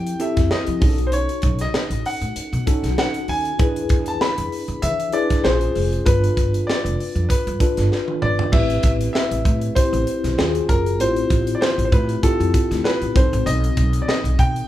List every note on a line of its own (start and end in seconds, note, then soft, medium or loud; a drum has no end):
0.00 0.11 F3 loud
0.00 0.19 C4 medium
0.00 0.20 E4 medium
0.00 0.20 G4 medium
0.00 0.21 A4 medium
0.00 0.22 G5 loud
0.07 closed hi-hat soft
0.19 0.82 C4 medium
0.19 0.82 E4 medium
0.19 0.82 G4 medium
0.19 0.82 A4 medium
0.19 0.52 E5 medium
0.19 closed hi-hat medium
0.37 0.47 F2 medium
0.37 kick medium
0.37 snare soft
0.37 closed hi-hat medium
0.51 1.08 D#5 medium
0.51 muted upright bass stroke soft
0.51 snare loud
0.67 0.78 F3 medium
0.67 closed hi-hat soft
0.81 1.25 B1 medium
0.81 1.81 C#4 medium
0.81 1.81 D#4 medium
0.81 1.81 F#4 medium
0.81 0.89 G#4 medium
0.81 kick loud
0.81 open hi-hat medium
0.89 1.85 A4 medium
0.98 closed hi-hat soft
1.07 1.13 C5 medium
1.12 1.57 C#5 medium
1.12 closed hi-hat medium
1.29 closed hi-hat medium
1.42 1.65 B1 medium
1.42 kick medium
1.42 closed hi-hat medium
1.59 2.07 D#5 medium
1.59 snare soft
1.59 closed hi-hat medium
1.74 snare loud
1.90 2.01 A1 medium
1.90 closed hi-hat medium
2.06 2.97 F#5 medium
2.06 open hi-hat medium
2.21 2.32 A2 medium
2.21 closed hi-hat soft
2.36 muted upright bass stroke soft
2.36 closed hi-hat medium
2.53 2.63 B2 loud
2.53 closed hi-hat soft
2.66 3.37 C#4 medium
2.66 3.37 D#4 medium
2.66 3.37 F#4 medium
2.66 3.37 A4 medium
2.66 kick medium
2.66 closed hi-hat medium
2.83 2.93 B1 medium
2.83 snare soft
2.83 closed hi-hat medium
2.98 3.27 F#5 medium
2.98 snare loud
3.14 closed hi-hat soft
3.28 3.50 D#2 medium
3.28 4.10 G#5 loud
3.28 open hi-hat medium
3.45 closed hi-hat soft
3.58 3.81 E2 loud
3.58 4.51 D4 medium
3.58 4.51 E4 medium
3.58 4.52 G#4 medium
3.58 4.52 B4 medium
3.58 kick loud
3.58 closed hi-hat medium
3.76 closed hi-hat soft
3.89 4.12 E2 loud
3.89 kick medium
3.89 closed hi-hat medium
4.06 4.21 A5 medium
4.06 closed hi-hat medium
4.21 4.85 B5 loud
4.21 snare loud
4.38 4.48 F2 medium
4.38 closed hi-hat medium
4.52 open hi-hat medium
4.68 4.84 E2 medium
4.68 closed hi-hat soft
4.82 5.05 E3 loud
4.82 5.15 E5 loud
4.82 closed hi-hat loud
5.00 closed hi-hat soft
5.12 5.44 D4 medium
5.12 5.44 E4 medium
5.12 5.43 G#4 medium
5.12 5.45 B4 medium
5.12 5.42 D5 medium
5.12 closed hi-hat medium
5.30 5.41 E2 medium
5.30 kick medium
5.30 snare soft
5.30 closed hi-hat medium
5.43 5.67 A#1 loud
5.43 5.95 C#4 medium
5.43 5.95 F4 medium
5.43 5.95 G#4 medium
5.43 6.08 C5 medium
5.43 5.95 C5 medium
5.43 snare loud
5.61 closed hi-hat soft
5.75 5.97 F1 medium
5.75 open hi-hat medium
5.93 closed hi-hat medium
6.05 6.28 G1 loud
6.05 6.98 D4 medium
6.05 6.98 F4 medium
6.05 6.98 A4 medium
6.05 6.70 B4 loud
6.05 6.99 B4 medium
6.05 kick loud
6.05 closed hi-hat medium
6.24 closed hi-hat medium
6.37 6.59 G1 medium
6.37 kick medium
6.37 closed hi-hat medium
6.54 closed hi-hat medium
6.67 7.25 D5 medium
6.67 snare loud
6.85 6.95 F1 medium
6.85 closed hi-hat medium
7.00 open hi-hat medium
7.15 7.25 F2 medium
7.15 closed hi-hat soft
7.29 8.18 B4 medium
7.29 muted upright bass stroke soft
7.29 kick medium
7.29 closed hi-hat loud
7.47 7.57 G2 loud
7.47 closed hi-hat soft
7.60 8.30 D4 medium
7.60 8.30 F4 medium
7.60 8.30 A4 medium
7.60 8.30 B4 medium
7.60 kick medium
7.60 closed hi-hat medium
7.77 7.87 G1 medium
7.77 snare soft
7.77 closed hi-hat medium
7.92 snare medium
8.08 high tom medium
8.22 8.44 G1 medium
8.22 8.54 D5 medium
8.22 mid tom medium
8.39 floor tom loud
8.52 8.74 A1 loud
8.52 9.45 C4 medium
8.52 9.45 E4 medium
8.52 9.45 G4 medium
8.52 9.45 B4 medium
8.52 8.81 E5 loud
8.52 kick loud
8.52 crash loud
8.70 closed hi-hat medium
8.83 9.05 A1 loud
8.83 8.90 E5 medium
8.83 kick medium
8.83 closed hi-hat medium
9.01 closed hi-hat medium
9.13 9.77 E5 medium
9.13 snare loud
9.31 9.41 A1 medium
9.31 closed hi-hat medium
9.45 9.67 A2 loud
9.45 kick medium
9.45 closed hi-hat medium
9.61 closed hi-hat soft
9.75 10.38 C4 medium
9.75 10.38 E4 medium
9.75 10.38 G4 medium
9.75 10.71 C5 medium
9.75 10.38 C5 medium
9.75 kick loud
9.75 closed hi-hat loud
9.93 10.03 A1 loud
9.93 closed hi-hat soft
10.07 closed hi-hat medium
10.24 10.34 B1 medium
10.24 snare soft
10.24 closed hi-hat medium
10.38 10.60 D#2 medium
10.38 10.88 C#4 medium
10.38 10.88 F4 medium
10.38 10.88 F#4 medium
10.38 10.89 G#4 medium
10.38 snare loud
10.55 closed hi-hat soft
10.69 11.00 F#1 medium
10.69 11.01 A#4 medium
10.69 kick loud
10.69 closed hi-hat medium
10.86 closed hi-hat soft
10.99 11.21 A1 loud
10.99 11.92 C4 medium
10.99 11.92 E4 medium
10.99 11.92 F4 medium
10.99 11.92 G4 medium
10.99 11.57 C5 loud
10.99 closed hi-hat medium
11.16 closed hi-hat medium
11.30 11.52 A1 loud
11.30 kick medium
11.30 closed hi-hat medium
11.47 closed hi-hat medium
11.55 11.61 D5 medium
11.61 11.83 C5 medium
11.61 snare loud
11.78 11.88 A1 medium
11.78 closed hi-hat medium
11.85 11.92 C5 medium
11.92 12.14 A2 loud
11.92 12.24 B4 medium
11.92 kick medium
11.92 closed hi-hat medium
12.09 closed hi-hat soft
12.23 13.13 C4 medium
12.23 13.15 E4 medium
12.23 13.15 F4 medium
12.23 13.15 G4 medium
12.23 12.86 A4 loud
12.23 kick loud
12.23 closed hi-hat loud
12.40 12.50 F2 medium
12.40 closed hi-hat soft
12.54 kick medium
12.54 closed hi-hat medium
12.71 12.81 D2 loud
12.71 snare soft
12.71 closed hi-hat medium
12.84 13.16 B4 medium
12.84 snare loud
13.02 13.11 A1 medium
13.02 closed hi-hat soft
13.15 13.27 B1 medium
13.15 14.14 C4 medium
13.15 14.14 D#4 medium
13.15 14.14 F#4 medium
13.15 14.15 A4 medium
13.15 13.48 C5 medium
13.15 kick loud
13.15 closed hi-hat medium
13.33 13.42 A1 loud
13.33 closed hi-hat medium
13.46 13.68 B1 loud
13.46 14.03 D#5 loud
13.46 closed hi-hat medium
13.64 closed hi-hat medium
13.77 13.99 B1 loud
13.77 kick medium
13.77 closed hi-hat medium
13.93 closed hi-hat medium
14.02 14.08 D5 medium
14.08 14.40 D#5 medium
14.08 snare loud
14.24 14.34 B1 medium
14.24 closed hi-hat medium
14.39 14.60 B2 loud
14.39 14.68 G5 loud
14.39 kick medium
14.39 closed hi-hat medium
14.56 closed hi-hat medium